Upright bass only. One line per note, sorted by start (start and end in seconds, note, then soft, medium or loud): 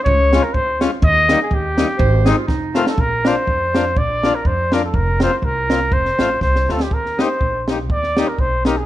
0.06 0.37 C#2 loud
0.54 0.86 D2 medium
1.02 1.34 D#2 loud
1.51 1.82 D#2 loud
1.99 2.31 G#1 loud
2.48 2.80 F1 medium
2.97 3.30 A#1 loud
3.47 3.98 F2 medium
3.96 4.28 A#1 medium
4.45 4.95 F2 medium
4.94 5.25 F1 medium
5.42 5.93 C2 medium
5.92 6.09 F1 loud
6.18 6.39 A1 medium
6.41 6.66 C2 medium
6.68 6.91 D2 medium
6.91 7.23 D#2 loud
7.41 7.90 A#1 medium
7.90 8.21 D#2 loud
8.38 8.86 B1 medium